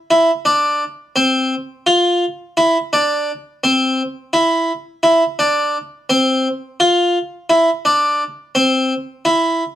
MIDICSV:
0, 0, Header, 1, 2, 480
1, 0, Start_track
1, 0, Key_signature, -1, "minor"
1, 0, Tempo, 703400
1, 70, Time_signature, 7, 3, 24, 8
1, 6654, End_track
2, 0, Start_track
2, 0, Title_t, "Harpsichord"
2, 0, Program_c, 0, 6
2, 72, Note_on_c, 0, 64, 74
2, 197, Note_off_c, 0, 64, 0
2, 309, Note_on_c, 0, 62, 61
2, 561, Note_off_c, 0, 62, 0
2, 790, Note_on_c, 0, 60, 63
2, 1042, Note_off_c, 0, 60, 0
2, 1273, Note_on_c, 0, 65, 68
2, 1524, Note_off_c, 0, 65, 0
2, 1755, Note_on_c, 0, 64, 74
2, 1881, Note_off_c, 0, 64, 0
2, 1999, Note_on_c, 0, 62, 65
2, 2249, Note_off_c, 0, 62, 0
2, 2481, Note_on_c, 0, 60, 67
2, 2731, Note_off_c, 0, 60, 0
2, 2957, Note_on_c, 0, 64, 67
2, 3208, Note_off_c, 0, 64, 0
2, 3434, Note_on_c, 0, 64, 78
2, 3560, Note_off_c, 0, 64, 0
2, 3679, Note_on_c, 0, 62, 66
2, 3929, Note_off_c, 0, 62, 0
2, 4160, Note_on_c, 0, 60, 74
2, 4409, Note_off_c, 0, 60, 0
2, 4641, Note_on_c, 0, 65, 76
2, 4890, Note_off_c, 0, 65, 0
2, 5115, Note_on_c, 0, 64, 79
2, 5241, Note_off_c, 0, 64, 0
2, 5358, Note_on_c, 0, 62, 67
2, 5608, Note_off_c, 0, 62, 0
2, 5835, Note_on_c, 0, 60, 72
2, 6085, Note_off_c, 0, 60, 0
2, 6313, Note_on_c, 0, 64, 66
2, 6563, Note_off_c, 0, 64, 0
2, 6654, End_track
0, 0, End_of_file